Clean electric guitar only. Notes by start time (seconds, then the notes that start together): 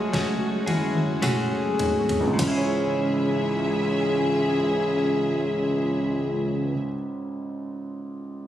Already playing: C#4 F#4 G#4
0.13 A3 C#4 F#4 G#4
0.66 C#4 F#4 G#4
1.22 A3 C#4 F#4 G#4
2.33 C#3
2.39 E3 C#4
2.48 E4 G#4